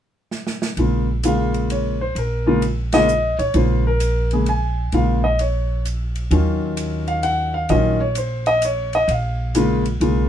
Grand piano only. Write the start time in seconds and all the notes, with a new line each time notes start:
0.78 C#3 G#3 A#3 F4
1.24 C#3 G#3 A#3 F4 F5
1.72 C#5
2.01 C5
2.18 A#4
2.46 C#3 G#3 A#3 F4
2.93 C#3 G#3 A#3 F4 D#5
3.39 C#5
3.54 C#3 G#3 A#3 F4 C5
3.87 A#4
4.32 C#3 G#3 A#3 G#4
4.49 G#5
4.93 C#3 G#3 A#3 F4 F5
5.24 D#5
5.41 C#5
6.31 D#3 F#3 C#4 F4
7.08 F5
7.23 F#5
7.54 F5
7.70 D#3 F#3 C#4 F4 D#5
8.01 C#5
8.17 C5
8.47 D#5
8.65 C#5
8.95 D#5
9.11 F5
9.55 C#3 G#3 A#3 F4
10.01 C#3 G#3 A#3 F4